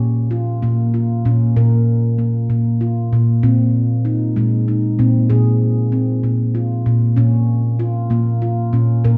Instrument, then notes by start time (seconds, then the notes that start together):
handpan
Already playing: C#4
0.31 F4
0.62 A#2 A#3
0.94 F4
1.25 A#2 C#4
1.57 A#2 A#4
2.18 A#3
2.50 A#2
2.81 F4
3.13 A#2
3.43 A#2 C4
4.05 D#4
4.36 A#2 G#3
4.68 D#4
4.99 A#2 C4
5.30 A#2 G#4
5.92 C4
6.23 A#2
6.55 F4
6.86 A#2
7.16 A#2 C#4
7.79 F4
8.10 A#2 A#3
8.42 F4
8.73 A#2 C#4
9.04 A#2 A#4